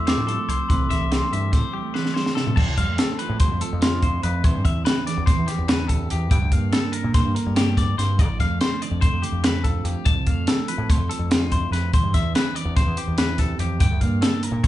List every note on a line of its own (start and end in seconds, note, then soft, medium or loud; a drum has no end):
0.00 0.16 E2 medium
0.00 0.48 F2 medium
0.00 0.27 A3 medium
0.00 0.71 C4 medium
0.00 0.72 E4 medium
0.07 0.67 F3 medium
0.07 0.27 C5 medium
0.07 0.66 D6 medium
0.07 snare loud
0.07 closed hi-hat medium
0.17 0.37 A2 medium
0.27 0.39 G3 medium
0.27 0.49 A4 medium
0.27 closed hi-hat medium
0.39 0.70 A3 soft
0.48 0.58 C2 medium
0.48 0.67 F2 medium
0.48 0.69 C5 medium
0.48 closed hi-hat medium
0.69 0.89 C2 loud
0.69 0.90 C3 medium
0.69 0.89 E3 medium
0.69 1.11 A3 medium
0.69 1.52 C4 medium
0.69 1.31 E4 medium
0.69 0.90 B4 medium
0.69 2.11 C6 medium
0.69 kick loud
0.69 closed hi-hat medium
0.90 1.94 E3 medium
0.90 1.11 E5 medium
0.90 kick medium
0.90 snare soft
0.90 closed hi-hat medium
1.01 1.20 C2 medium
1.11 1.72 A3 medium
1.11 1.32 C5 medium
1.11 snare medium
1.11 closed hi-hat medium
1.32 1.52 G2 medium
1.32 4.03 E4 medium
1.32 1.52 E5 medium
1.32 closed hi-hat medium
1.52 1.62 A2 medium
1.52 2.55 C4 medium
1.52 1.73 C5 medium
1.52 kick loud
1.52 snare soft
1.52 closed hi-hat medium
1.72 1.83 G3 medium
1.72 1.94 G4 medium
1.83 2.15 A3 soft
1.94 2.55 E3 medium
1.94 2.14 B4 medium
1.94 snare medium
2.06 snare medium
2.14 2.27 G3 medium
2.14 2.35 C5 medium
2.14 snare medium
2.26 2.57 A3 soft
2.26 snare medium
2.35 2.55 C3 medium
2.35 2.56 A4 medium
2.35 snare medium
2.47 floor tom medium
2.56 2.67 F2 medium
2.56 4.23 F2 medium
2.56 2.77 A5 medium
2.56 kick loud
2.56 crash loud
2.67 2.77 C2 medium
2.77 2.97 F2 medium
2.77 2.89 G3 medium
2.77 2.99 F5 medium
2.77 kick medium
2.77 closed hi-hat medium
2.89 3.41 A3 soft
2.98 3.82 C4 medium
2.98 3.19 A4 medium
2.98 snare loud
2.98 closed hi-hat medium
3.19 3.61 F3 medium
3.19 3.40 B4 medium
3.19 closed hi-hat medium
3.29 3.49 A2 medium
3.40 3.52 G3 medium
3.40 3.61 C5 medium
3.40 kick loud
3.40 closed hi-hat loud
3.52 3.61 F2 medium
3.52 4.45 A3 medium
3.61 4.42 F3 medium
3.61 3.82 A4 medium
3.61 closed hi-hat medium
3.73 4.21 F2 medium
3.82 4.43 C4 medium
3.82 4.03 F4 medium
3.82 snare loud
3.82 closed hi-hat medium
4.02 4.45 E4 medium
4.02 4.23 C5 medium
4.02 kick medium
4.02 closed hi-hat medium
4.23 4.44 F2 medium
4.23 4.42 F2 medium
4.23 4.44 B4 medium
4.23 closed hi-hat medium
4.44 4.54 E2 medium
4.44 6.10 E2 medium
4.44 5.07 E3 medium
4.44 4.65 B3 medium
4.44 4.87 C4 medium
4.44 5.91 E4 medium
4.44 4.65 C5 medium
4.44 kick loud
4.44 closed hi-hat medium
4.55 4.64 G2 medium
4.65 4.84 E2 medium
4.65 5.28 B3 medium
4.65 4.85 E5 medium
4.65 kick medium
4.65 closed hi-hat medium
4.85 5.69 C4 medium
4.85 5.06 B4 medium
4.85 snare loud
4.85 closed hi-hat medium
5.07 5.47 E3 medium
5.07 5.26 D5 medium
5.07 snare soft
5.07 closed hi-hat medium
5.17 5.37 E2 medium
5.26 6.30 B3 medium
5.26 5.48 C5 medium
5.26 kick loud
5.26 snare soft
5.26 closed hi-hat medium
5.37 5.47 E2 medium
5.47 6.29 E3 medium
5.47 5.68 G4 medium
5.47 snare soft
5.47 closed hi-hat medium
5.58 6.07 E2 medium
5.68 6.30 C4 medium
5.68 5.88 B4 medium
5.68 snare loud
5.68 closed hi-hat medium
5.88 6.30 G4 medium
5.88 6.10 A4 medium
5.88 kick medium
5.88 closed hi-hat medium
6.10 6.31 E2 medium
6.10 6.32 G4 medium
6.10 closed hi-hat medium
6.31 6.41 G2 loud
6.31 7.97 G2 medium
6.31 6.53 G5 medium
6.31 kick loud
6.31 closed hi-hat medium
6.42 6.51 D2 medium
6.51 6.71 G2 medium
6.51 7.15 A#3 medium
6.51 6.73 F5 medium
6.51 kick medium
6.51 closed hi-hat medium
6.73 8.17 D4 medium
6.73 6.92 A4 medium
6.73 snare loud
6.73 closed hi-hat medium
6.92 7.35 D3 medium
6.92 7.14 A#4 medium
6.92 closed hi-hat medium
7.04 7.24 A#2 medium
7.14 8.17 A#3 medium
7.14 7.35 C5 medium
7.14 kick loud
7.14 snare soft
7.14 closed hi-hat medium
7.25 7.35 G2 medium
7.35 8.81 D3 medium
7.35 7.56 A#4 medium
7.35 closed hi-hat medium
7.47 7.95 G2 medium
7.56 7.76 A#2 medium
7.56 7.77 G4 medium
7.56 snare loud
7.56 closed hi-hat loud
7.76 7.98 A2 medium
7.76 7.98 D5 medium
7.76 kick medium
7.76 snare soft
7.76 closed hi-hat medium
7.98 8.20 G2 medium
7.98 8.19 G2 medium
7.98 8.20 C5 medium
7.98 snare soft
7.98 closed hi-hat medium
8.19 8.28 F2 loud
8.19 9.85 F2 medium
8.19 8.40 D5 medium
8.19 kick loud
8.19 closed hi-hat medium
8.29 8.39 A1 medium
8.39 8.59 F2 medium
8.39 9.04 A3 medium
8.39 8.61 F5 medium
8.39 kick medium
8.39 snare soft
8.39 closed hi-hat medium
8.61 9.44 C4 medium
8.61 8.82 C5 medium
8.61 snare medium
8.61 closed hi-hat medium
8.82 9.22 D3 medium
8.82 9.01 D5 medium
8.82 closed hi-hat medium
8.91 9.11 F2 loud
9.01 10.05 A3 medium
9.01 9.23 C5 medium
9.01 kick loud
9.01 closed hi-hat medium
9.12 9.22 F2 medium
9.22 10.06 D3 medium
9.22 9.44 G4 medium
9.22 closed hi-hat medium
9.32 9.81 F2 medium
9.44 10.49 C4 medium
9.44 9.64 B4 medium
9.44 snare loud
9.44 closed hi-hat medium
9.64 10.04 F4 medium
9.64 9.84 A4 medium
9.64 kick medium
9.64 closed hi-hat medium
9.84 9.95 F2 medium
9.84 10.04 F2 medium
9.84 10.06 G4 medium
9.84 closed hi-hat medium
10.05 10.15 F2 loud
10.05 11.73 F2 medium
10.05 10.27 A5 medium
10.05 kick loud
10.05 closed hi-hat medium
10.16 10.26 C2 medium
10.27 10.46 F2 medium
10.27 10.90 A3 medium
10.27 10.48 F5 medium
10.27 kick medium
10.27 closed hi-hat medium
10.47 10.69 A4 medium
10.47 snare loud
10.47 closed hi-hat medium
10.68 11.11 F3 medium
10.68 10.90 B4 medium
10.68 closed hi-hat medium
10.78 10.97 A2 loud
10.90 11.92 A3 medium
10.90 11.11 C5 medium
10.90 kick loud
10.90 closed hi-hat loud
10.98 11.09 F2 medium
11.09 11.92 F3 medium
11.09 11.31 A4 medium
11.09 closed hi-hat medium
11.19 11.69 F2 medium
11.31 11.92 C4 medium
11.31 11.52 F4 medium
11.31 snare loud
11.31 closed hi-hat medium
11.52 13.39 E4 medium
11.52 11.72 C5 medium
11.52 kick medium
11.52 closed hi-hat medium
11.71 11.93 F2 medium
11.71 11.92 F2 medium
11.71 11.93 B4 medium
11.71 snare soft
11.71 closed hi-hat medium
11.93 12.02 E2 medium
11.93 13.59 E2 medium
11.93 12.14 C5 medium
11.93 kick loud
11.93 closed hi-hat medium
12.03 12.13 G2 medium
12.14 12.34 E2 medium
12.14 12.77 B3 medium
12.14 12.35 E5 medium
12.14 kick medium
12.14 snare soft
12.14 closed hi-hat medium
12.35 13.18 C4 medium
12.35 12.55 B4 medium
12.35 snare loud
12.35 closed hi-hat medium
12.55 12.97 E3 medium
12.55 12.76 D5 medium
12.55 closed hi-hat medium
12.65 12.85 E2 loud
12.76 13.79 B3 medium
12.76 12.97 C5 medium
12.76 kick loud
12.76 snare soft
12.76 closed hi-hat medium
12.86 12.96 E2 medium
12.97 13.79 E3 medium
12.97 13.18 G4 medium
12.97 closed hi-hat medium
13.08 13.57 E2 medium
13.18 13.39 B4 medium
13.18 snare loud
13.18 closed hi-hat medium
13.38 13.79 G4 medium
13.38 13.60 A4 medium
13.38 kick medium
13.38 snare soft
13.38 closed hi-hat medium
13.59 13.81 E2 medium
13.59 13.81 F2 medium
13.59 13.81 G4 medium
13.59 closed hi-hat medium
13.80 13.90 G2 medium
13.80 14.67 G2 medium
13.80 14.01 G5 medium
13.80 kick loud
13.80 closed hi-hat medium
13.91 14.00 D2 medium
14.01 14.21 G2 medium
14.01 14.64 A#3 medium
14.01 14.22 F5 medium
14.01 kick medium
14.01 closed hi-hat medium
14.22 14.67 D4 medium
14.22 14.43 A4 medium
14.22 snare loud
14.22 closed hi-hat loud
14.43 14.67 D3 medium
14.43 14.64 A#4 medium
14.43 closed hi-hat medium
14.52 14.67 A#2 loud
14.63 14.67 C5 medium
14.63 kick loud
14.63 closed hi-hat loud